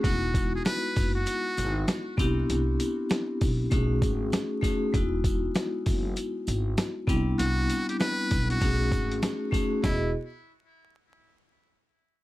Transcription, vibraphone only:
X:1
M:4/4
L:1/8
Q:"Swing 16ths" 1/4=98
K:E
V:1 name="Vibraphone"
[G,B,DEF]3 z4 [B,=C=DE=G]- | [B,=C=DE=G]2 z2 [A,^C^DF^G]2 z [A,CDFG] | [G,B,DEF]3 z4 [=G,B,=C=DE]- | [=G,B,=C=DE]2 z2 [A,^C^DF^G]2 z [A,CDFG] |
[B,EFGd] z6 z |]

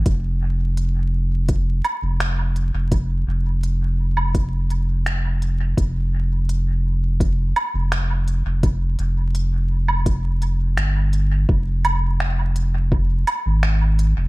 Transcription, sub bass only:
X:1
M:4/4
L:1/16
Q:1/4=84
K:Fm
V:1 name="Sub bass" clef=bass
F,,,8- F,,,2 z F,,,4 F,,,- | F,,,2 F,,,12- F,,,2 | F,,,8- F,,,2 z F,,,4 F,,,- | F,,,2 F,,,8- F,,,2 G,,,4 |
F,,,8- F,,,2 z A,,,4 F,,, |]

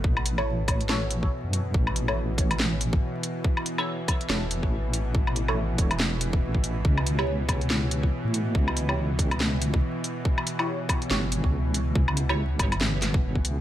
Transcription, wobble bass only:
X:1
M:4/4
L:1/16
Q:"Swing 16ths" 1/4=141
K:Amix
V:1 name="Wobble bass" clef=bass
A,,,12 z F,,3 | A,,,12 z4 | z8 E,,,3 A,,,4- A,,,- | A,,,6 E,,,6 A,,,4 |
C,,12 z A,,3 | C,,12 z4 | z8 G,,,3 C,,4- C,,- | C,,6 G,,,6 G,,,2 C,,2 |]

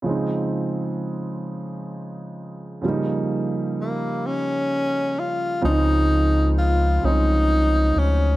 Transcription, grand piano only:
X:1
M:6/8
L:1/8
Q:3/8=43
K:Db
V:1 name="Grand piano" clef=bass
[D,F,A,CE]6 | [D,F,=G,B,E]6 | [D,F,A,C=DE]2 z [F,A,C_DE]2 z |]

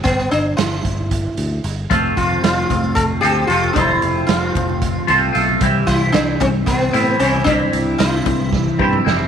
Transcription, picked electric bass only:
X:1
M:7/8
L:1/8
Q:1/4=113
K:Flyd
V:1 name="Picked electric bass" clef=bass
G,,, G,,, G,,, G,,,2 D,, G,,, | F,,, F,,, F,,, F,,, F,,, D,, F,,, | F,,, F,,, F,,, F,,,2 C,, B,,, | C,, C,, C,, C,, C,, A,, C,, |
C,, C,, C,, C,,2 G,, F,,, |]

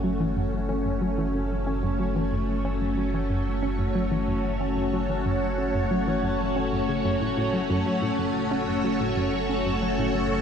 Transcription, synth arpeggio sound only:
X:1
M:4/4
L:1/16
Q:1/4=92
K:F#m
V:1 name="Synth arpeggio sound" clef=bass
F, E, F,, z C F,, F, E, F,, z C F,, F, E, F,, z | C F,, F, E, F,, z C F,, F, E, F,, z C F,, F, E, | F,, z C F,, F, E, F,, z C F,, C, F,, A,, A,, F, F,, | F, A,, F,, z C F,, F, A,, F,, z C F,, F, A,, F,, z |]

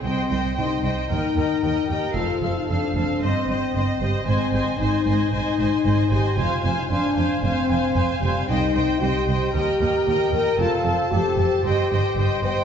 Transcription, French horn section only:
X:1
M:4/4
L:1/16
Q:1/4=114
K:Cm
V:1 name="French horn section"
C4 E4 E6 G2 | F3 E D4 C6 G,2 | C4 E4 E6 G2 | F3 E D4 C6 G,2 |
E4 G4 G6 B2 | F4 G4 G6 c2 |]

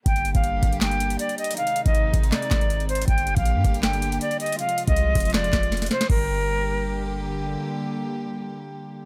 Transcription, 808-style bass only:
X:1
M:4/4
L:1/16
Q:1/4=159
K:Gphr
V:1 name="808-style bass" clef=bass
G,,,3 G,,,3 G,,,6 z4 | z3 A,,,3 A,,,2 z2 A,,,6 | G,,,3 B,,,2 G,, G,,,6 z4 | z3 C,,3 F,,,4 F,,,4 z2 |
G,,,16 | z16 |]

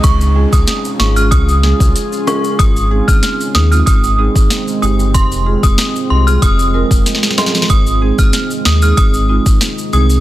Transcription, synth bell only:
X:1
M:4/4
L:1/16
Q:1/4=94
K:Ab
V:1 name="Synth bell"
d' z2 e' z2 d' f' e'3 z3 d' z | e' z2 f' z2 e' f' e'3 z3 e' z | c' z2 e' z2 c' f' e'3 z3 c' z | e' z2 f' z2 e' f' e'3 z3 e' z |]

